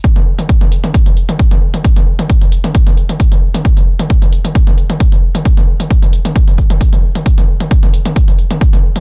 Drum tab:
HH |xx-xxxxxxxxxxx-x|xx-xxxxxxxxxxx-x|xx-xxxxxxxxxxx-x|xx-xxxxxxxxxxx-x|
T2 |-o-o-o-o-o-o-o-o|-o-o-o-o-o-o-o-o|-o-o-o-o-o-o-o-o|-o-o-o-o-o-o-o-o|
BD |o---o---o---o---|o---o---o---o---|o---o---o---o---|o---o---o-o-o---|

HH |xx-xxxxxxxxxxx-x|
T2 |-o-o-o-o-o-o-o-o|
BD |o---o---o---o---|